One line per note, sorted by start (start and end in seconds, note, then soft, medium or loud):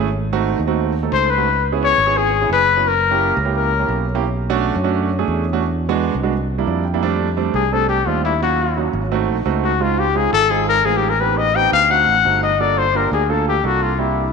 0.00 0.54 G#1 medium
0.33 0.57 A3 medium
0.33 0.57 C4 medium
0.33 0.57 D#4 medium
0.33 0.57 F#4 loud
0.59 1.08 D#2 medium
0.67 0.92 A3 medium
0.67 0.92 C4 medium
0.67 0.92 D#4 medium
0.67 0.92 F#4 medium
1.03 1.27 A3 medium
1.03 1.27 C4 medium
1.03 1.27 D#4 medium
1.03 1.27 A4 medium
1.12 1.93 C#2 medium
1.12 1.32 C5 loud
1.30 1.64 B4 medium
1.38 1.46 A3 medium
1.38 1.46 C4 medium
1.38 1.46 D#4 medium
1.38 1.46 F#4 medium
1.72 1.96 B3 medium
1.72 1.97 C#4 medium
1.72 1.97 E4 medium
1.72 1.97 G#4 medium
1.83 2.19 C#5 loud
1.98 2.46 G#1 medium
2.06 2.31 B3 medium
2.06 2.31 C#4 medium
2.06 2.31 E4 medium
2.06 2.31 G#4 medium
2.17 2.51 G#4 medium
2.42 2.66 B3 medium
2.42 2.66 C#4 medium
2.42 2.66 E4 medium
2.42 2.66 G#4 medium
2.49 3.31 F#1 medium
2.49 2.89 B4 loud
2.77 2.85 B3 medium
2.77 2.85 C#4 medium
2.77 2.85 E4 medium
2.77 2.85 F#4 medium
2.88 3.38 A#4 medium
3.11 3.35 A#3 medium
3.11 3.35 C#4 medium
3.11 3.35 E4 medium
3.11 3.35 G4 loud
3.37 3.85 C#2 medium
3.45 3.70 A#3 medium
3.45 3.70 C#4 medium
3.45 3.69 E4 medium
3.45 3.70 G4 medium
3.56 4.04 A#4 medium
3.79 4.04 A#3 medium
3.79 4.04 C#4 medium
3.79 4.04 E4 medium
3.79 4.04 G4 medium
3.89 4.70 B1 medium
4.15 4.24 A#3 medium
4.15 4.24 C#4 medium
4.15 4.24 E4 medium
4.15 4.24 G4 loud
4.50 4.74 A3 loud
4.50 4.74 C#4 medium
4.50 4.74 D4 loud
4.50 4.74 F#4 loud
4.76 5.24 F#2 medium
4.84 5.09 A3 medium
4.84 5.09 C#4 medium
4.84 5.09 D4 medium
4.84 5.09 F#4 loud
5.19 5.43 A3 medium
5.19 5.43 C#4 medium
5.19 5.43 D4 medium
5.19 5.43 G#4 medium
5.28 6.09 E2 medium
5.53 5.62 A3 medium
5.53 5.62 C#4 medium
5.53 5.62 D4 medium
5.53 5.62 F#4 loud
5.89 6.13 G#3 medium
5.89 6.13 B3 medium
5.89 6.13 D4 medium
5.89 6.13 F#4 loud
6.15 6.63 C2 medium
6.23 6.32 G#3 medium
6.23 6.32 B3 medium
6.23 6.32 D4 medium
6.23 6.32 F#4 medium
6.58 6.83 G3 medium
6.58 6.83 A#3 medium
6.58 6.83 D4 medium
6.58 6.83 E4 medium
6.67 7.48 F2 medium
6.67 6.84 D5 medium
6.85 7.01 G5 medium
6.94 7.01 G3 medium
6.94 7.02 A#3 medium
6.94 7.01 D4 medium
6.94 7.02 E4 medium
7.03 7.27 G3 loud
7.03 7.27 A3 medium
7.03 7.27 C4 medium
7.03 7.27 D4 loud
7.37 7.61 G3 medium
7.37 7.61 A3 medium
7.37 7.61 C4 medium
7.37 7.61 D4 medium
7.54 8.03 C2 medium
7.54 7.74 G#4 medium
7.72 7.96 G3 medium
7.72 7.96 A3 medium
7.72 7.96 C4 medium
7.72 7.96 D4 medium
7.72 7.88 A4 medium
7.89 8.09 G4 medium
8.06 8.88 D#2 medium
8.06 8.31 G3 medium
8.06 8.31 A3 medium
8.06 8.31 C4 medium
8.06 8.31 D4 medium
8.06 8.24 F4 medium
8.25 8.40 E4 medium
8.42 8.66 F#3 medium
8.42 8.66 A#3 medium
8.42 8.66 C#4 medium
8.42 8.66 F4 medium
8.42 8.90 F#4 medium
8.77 9.01 F#3 medium
8.77 9.01 A#3 medium
8.77 9.01 C#4 medium
8.77 9.01 F#4 medium
8.93 9.26 G#1 medium
9.12 9.36 A3 medium
9.12 9.36 C4 medium
9.12 9.36 D#4 medium
9.12 9.36 F#4 loud
9.28 9.44 A#1 medium
9.46 10.27 C#2 medium
9.46 9.70 A3 medium
9.46 9.70 C4 medium
9.46 9.70 D#4 medium
9.46 9.70 F#4 medium
9.64 9.83 F#4 medium
9.80 10.05 G#3 medium
9.80 10.05 C4 medium
9.80 10.05 D#4 medium
9.80 10.05 F4 medium
9.80 10.00 F4 medium
9.99 10.18 G4 medium
10.15 10.40 G#3 medium
10.15 10.40 C4 medium
10.15 10.40 D#4 medium
10.15 10.40 F4 medium
10.15 10.32 G#4 medium
10.33 10.81 G#1 medium
10.33 10.52 A4 loud
10.50 10.75 G#3 medium
10.50 10.75 C4 medium
10.50 10.75 D#4 medium
10.50 10.75 F4 medium
10.50 10.68 G#4 medium
10.68 10.87 A#4 loud
10.85 11.66 A1 medium
10.85 11.10 G#3 medium
10.85 11.10 C4 medium
10.85 11.10 D#4 medium
10.85 11.10 F4 medium
10.85 10.98 G#4 medium
10.97 11.11 G4 medium
11.09 11.22 A#4 medium
11.20 11.45 B3 medium
11.20 11.45 C4 medium
11.20 11.45 D#4 medium
11.20 11.45 G4 medium
11.20 11.39 B4 medium
11.37 11.57 D#5 medium
11.55 11.80 B3 medium
11.55 11.80 C4 medium
11.55 11.80 D#4 medium
11.55 11.80 G4 medium
11.55 11.73 G5 loud
11.72 12.05 D2 medium
11.72 11.93 F5 loud
11.90 12.14 A3 medium
11.90 12.14 C4 medium
11.90 12.14 D#4 medium
11.90 12.14 F#4 medium
11.90 12.42 F#5 loud
12.07 12.23 A1 medium
12.25 13.06 G1 medium
12.25 12.49 A3 medium
12.25 12.49 C4 medium
12.25 12.49 D#4 medium
12.25 12.49 F#4 medium
12.43 12.61 D#5 medium
12.60 12.84 A#3 medium
12.60 12.84 D4 medium
12.60 12.84 F4 medium
12.60 12.84 A4 medium
12.60 12.80 D5 medium
12.78 12.98 C5 loud
12.95 13.19 A#3 medium
12.95 13.19 D4 medium
12.95 13.19 F4 medium
12.95 13.19 G4 medium
12.95 13.13 A#4 medium
13.12 13.60 D2 medium
13.12 13.32 G#4 medium
13.29 13.54 A#3 medium
13.29 13.53 D4 medium
13.29 13.54 F4 medium
13.29 13.54 A4 medium
13.29 13.47 A4 medium
13.48 13.67 G4 medium
13.64 14.33 C2 medium
13.64 13.88 A#3 medium
13.64 13.88 D4 medium
13.64 13.88 F4 medium
13.64 13.84 F#4 medium
13.64 13.88 A4 medium
13.82 14.01 F4 medium
13.99 14.23 A#3 medium
13.99 14.23 D4 medium
13.99 14.23 E4 medium
13.99 14.33 E4 medium
13.99 14.23 G4 medium